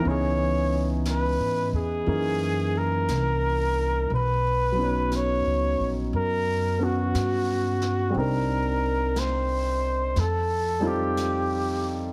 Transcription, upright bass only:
0.05 C#2
1.39 G#2
1.72 E2
2.06 F#2
3.08 C2
4.10 B1
5.46 C#2
5.80 A#1
6.13 F#2
7.14 G2
8.15 C2
10.16 F2

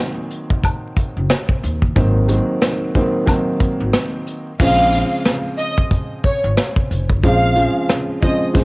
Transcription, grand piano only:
Already playing: D#3 F#3 A#3 C4
1.96 D#3 F#3 A#3 C4
2.28 D#3 F#3 A#3 C4
2.95 D#3 F#3 A#3 C4
3.26 D#3 F#3 A#3 C4
4.61 C#3 F3 G#3 C4
7.23 C#3 F3 G#3 C4
7.55 C#3 F3 G#3 C4
8.22 C#3 F3 G#3 C4
8.53 C#3 F3 G#3 C4

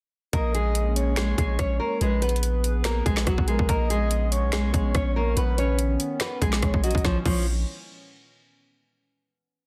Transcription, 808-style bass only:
0.33 A#1
1.38 A#1
1.59 A#1
2.01 A#1
3.06 A#1
3.27 A#1
3.38 A#1
3.59 A#1
3.69 A#1
4.43 B1
4.74 A#1
4.95 A#1
5.37 A#1
6.42 A#1
6.63 A#1
6.74 A#1
6.95 A#1
7.05 A#1
7.26 A#1

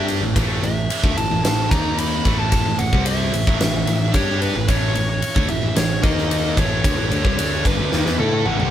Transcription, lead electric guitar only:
0.64 E5
1.17 A5
1.44 A5
1.71 A#5
1.99 B5
2.39 A5
2.79 F#5
3.07 E5
4.14 C#5
4.42 B4
4.69 C#5
5.09 C#5
5.49 E5
5.77 C#5
6.03 D#5
6.31 D#5
6.59 C#5
7.27 C#5
7.66 B4
8.19 A4
8.45 F#5

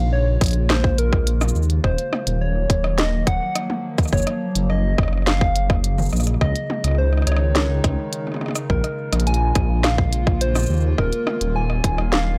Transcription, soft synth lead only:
Already playing: F5
0.13 C#5
0.70 C5
0.99 A#4
1.84 C5
2.41 C#5
2.98 D#5
3.27 F#5
4.13 C#5
4.70 D#5
5.27 F5
6.41 D#5
6.98 C5
7.27 C#5
8.70 A#4
9.27 G#5
9.84 F5
10.41 C5
10.99 A#4
11.56 G#5
12.13 F5

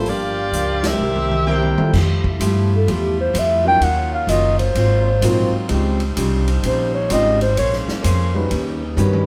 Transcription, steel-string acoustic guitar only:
0.07 G2 F3 A#3 D4
0.53 G2 F3 A#3 D4
1.00 C3 G3 A#3 E4
1.47 C3 G3 A#3 E4
1.95 F3 A3 E4 G4
2.40 F3 A3 E4 G4
2.87 F3 A3 E4 G4
3.33 F3 A3 E4 G4
3.80 D#3 F#3 C#4 F4
4.28 D#3 F#3 C#4 F4
4.75 G#2 F#3 C4 F4
5.21 G#2 F#3 C4 F4
5.69 C#3 G3 C4 F4
6.16 C#3 G3 C4 F4
6.63 C#3 G3 C4 F4
7.10 C#3 G3 C4 F4
7.57 A#3 C#4 G#4 C5
8.02 A#3 C#4 G#4 C5
8.49 D#3 C#4 G4 B4
8.97 D#3 C#4 G4 B4

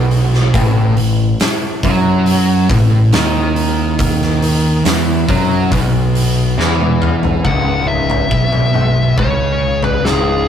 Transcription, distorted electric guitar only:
Already playing: B2
0.54 A2
0.98 A2
1.84 F#3
2.70 A2
3.12 D#3
4.85 E3
5.29 F#3
5.71 B2
6.58 E3
7.45 C#2
8.30 B2
9.18 C#3
10.04 C#2

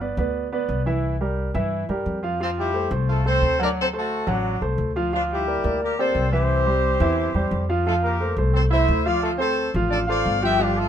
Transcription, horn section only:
2.42 F3 C4 F4
2.58 G3 E4 G4
3.09 A3 F4 A4
3.27 C4 A4 C5
3.62 D4 A#4 D5
3.80 C4 A4 C5
3.97 A3 F#4 A4
4.30 F#3 D4 F#4
5.14 F3 D4 F4
5.31 G3 E4 G4
5.83 A#3 G4 A#4
5.99 C4 A4 C5
6.33 C4 G4 C5
7.86 A3 F4 A4
8.03 A#3 G4 A#4
8.54 C4 A4 C5
8.71 E4 C5 E5
9.05 F4 D5 F5
9.22 A3 F4 A4
9.38 C4 A4 C5
9.90 D4 A4 D5
10.07 F4 D5 F5
10.42 G4 E5 G5
10.60 G3 D4 G4
10.77 A3 F4 A4

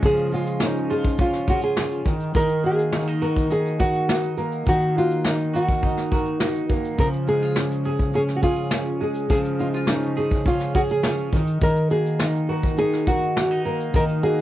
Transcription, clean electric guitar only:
Already playing: G#3 C#4 F4
0.04 F3
0.32 G#3
0.62 C#4
0.90 F4
1.19 C#4
1.48 F4
1.77 C#4
2.06 D#3
2.35 D#3
2.64 A#3
2.93 C#4
3.08 D#4
3.22 F#4
3.51 D#4
3.80 F#4
4.09 D#4
4.38 A#3
4.67 D#3
4.96 A#3
5.25 D#4
5.54 F#4
5.83 D#4
6.12 F#4
6.41 D#4
6.70 A#3
6.99 F3
7.27 G#3
7.57 C#4
7.85 G#4
8.14 C#4
8.44 G#4
8.72 C#4
9.01 G#3
9.30 F3
9.59 G#3
9.88 C#4
10.17 G#4
10.46 C#4
10.75 G#4
11.04 C#4
11.33 D#3
11.62 D#3
11.91 A#3
12.20 D#4
12.49 F#4
12.78 D#4
13.07 F#4
13.36 C#4
13.51 D#4
13.65 A#3
13.94 D#3
14.23 A#3

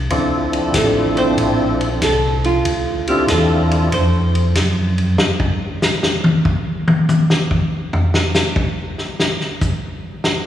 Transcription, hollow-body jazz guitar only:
0.77 A3 A4
1.18 C4 C5
2.04 A4
2.46 F4
3.08 G4
3.30 A4
3.94 C5

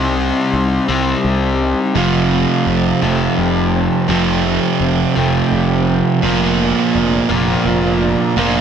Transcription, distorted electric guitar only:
1.95 F2 C3 F3
4.08 F2 C3 F3
6.22 A#2 F3 A#3
8.36 A#2 F3 A#3

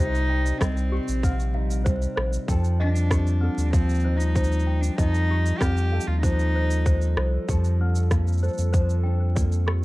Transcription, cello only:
0.00 D#4
0.60 C4
2.80 D4
3.65 D4
3.71 C4
4.17 D#4
4.80 D4
4.96 D#4
5.58 G4
6.07 F4
6.22 D#4

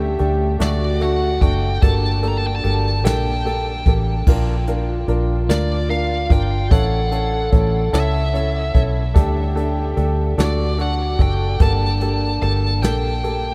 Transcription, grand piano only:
0.19 A3 D4 G4
0.59 A3 D4 F#4
1.00 A3 D4 F#4
1.40 A3 D4 F#4
1.81 A#3 G4 A4
2.22 A#3 G4 A4
2.64 A#3 G4 A4
3.04 A#3 G4 A4
3.45 A#3 G4 A4
3.87 A#3 G4 A4
4.27 D4 F4 A#4
4.67 D4 F4 A#4
5.08 D4 F4 A#4
5.49 D4 F4 A#4
5.89 D4 F4 A#4
6.29 D4 F4 A#4
6.71 C#4 E4 A4
7.11 C#4 E4 A4
7.52 C#4 E4 A4
7.93 C#4 E4 A4
8.34 C#4 E4 A4
8.74 C#4 E4 A4
9.14 D4 G4 A4
9.55 D4 G4 A4
9.96 D4 G4 A4
10.38 D4 F#4 A4
10.78 D4 F#4 A4
11.18 D4 F#4 A4
11.60 A#3 G4 A4
12.01 A#3 G4 A4
12.42 A#3 G4 A4
12.83 A#3 G4 A4
13.23 A#3 G4 A4

